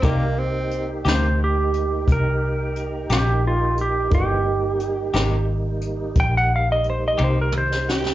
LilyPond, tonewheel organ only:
\new Staff \with { instrumentName = "Tonewheel organ" } { \time 12/8 \key c \minor \tempo 4. = 59 <bes ees' g'>1. | <e aes b ees'>8 <g bes ees'>1~ <g bes ees'>4. | }